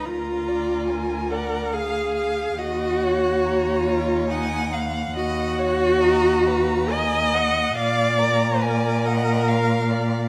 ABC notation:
X:1
M:3/4
L:1/8
Q:1/4=70
K:D#m
V:1 name="Violin"
a2 g f e e | f2 a2 g f- | [K:Ebm] ^f2 ^a a _a f | f b a g f2 |]
V:2 name="Violin"
A =d A d e e | d c3 f e | [K:Ebm] ^d _d ^d c ^A ^f | f B =d e f d |]
V:3 name="Viola"
E3 A G2 | F3 E D z | [K:Ebm] ^F4 ^d2 | =d2 B4 |]
V:4 name="Cello" clef=bass
=D,,6 | D,,6 | [K:Ebm] ^D,,6 | B,,6 |]